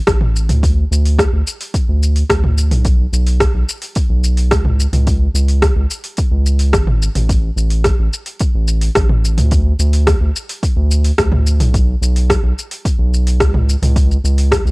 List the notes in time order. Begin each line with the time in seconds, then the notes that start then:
0.07 A1, kick, cross-stick, open hi-hat, shaker
0.21 mid tom
0.36 shaker
0.49 D2, mid tom, open hi-hat, shaker
0.63 kick, open hi-hat, shaker
0.91 D2, shaker
1.05 open hi-hat, shaker
1.19 kick, cross-stick, open hi-hat, shaker
1.33 D2
1.47 shaker
1.61 open hi-hat, shaker
1.74 kick, open hi-hat, shaker
1.89 D2
2.03 shaker
2.16 open hi-hat, shaker
2.30 D2, kick, cross-stick, open hi-hat, shaker
2.44 mid tom
2.58 shaker
2.71 B1, mid tom, open hi-hat, shaker
2.85 kick, open hi-hat, shaker
3.13 B1, shaker
3.27 open hi-hat, shaker
3.40 kick, cross-stick, open hi-hat, shaker
3.54 B1
3.69 shaker
3.82 open hi-hat, shaker
3.95 kick, open hi-hat, shaker
4.09 B1
4.24 shaker
4.37 open hi-hat, shaker
4.51 C#2, kick, cross-stick, open hi-hat, shaker
4.65 mid tom
4.80 shaker
4.93 C#2, mid tom, open hi-hat, shaker
5.07 kick, open hi-hat, shaker
5.34 C#2, shaker
5.48 open hi-hat, shaker
5.62 kick, cross-stick, open hi-hat, shaker
5.76 C#2
5.91 shaker
6.04 open hi-hat, shaker
6.17 kick, open hi-hat, shaker
6.31 C#2
6.46 shaker
6.59 open hi-hat, shaker
6.73 G#1, kick, cross-stick, open hi-hat, shaker
6.87 mid tom
7.02 shaker
7.16 A1, mid tom, open hi-hat, shaker
7.29 kick, open hi-hat, shaker
7.56 A1, shaker
7.71 open hi-hat, shaker
7.84 kick, cross-stick, open hi-hat, shaker
7.99 A1
8.13 shaker
8.26 open hi-hat, shaker
8.40 kick, open hi-hat, shaker
8.55 A1
8.68 shaker
8.81 open hi-hat, shaker
8.95 A1, kick, cross-stick, open hi-hat, shaker
9.09 mid tom
9.25 shaker
9.38 D2, mid tom, open hi-hat, shaker
9.51 kick, open hi-hat, shaker
9.79 D2, shaker
9.93 open hi-hat, shaker
10.07 kick, cross-stick, open hi-hat, shaker
10.21 D2
10.36 shaker
10.49 open hi-hat, shaker
10.63 kick, open hi-hat, shaker
10.76 D2
10.91 shaker
11.04 open hi-hat, shaker
11.18 D2, kick, cross-stick, open hi-hat, shaker
11.32 mid tom
11.47 shaker
11.60 B1, mid tom, open hi-hat, shaker
11.74 kick, open hi-hat, shaker
12.02 B1, shaker
12.16 open hi-hat, shaker
12.30 kick, cross-stick, open hi-hat, shaker
12.43 B1
12.59 shaker
12.71 open hi-hat, shaker
12.85 kick, open hi-hat, shaker
12.99 B1
13.14 shaker
13.27 open hi-hat, shaker
13.40 C#2, kick, cross-stick, open hi-hat, shaker
13.54 mid tom
13.69 shaker
13.82 C#2, mid tom, open hi-hat, shaker
13.96 kick, open hi-hat, shaker
14.11 shaker
14.24 C#2, shaker
14.38 open hi-hat, shaker
14.52 kick, cross-stick, open hi-hat, shaker
14.65 C#2, shaker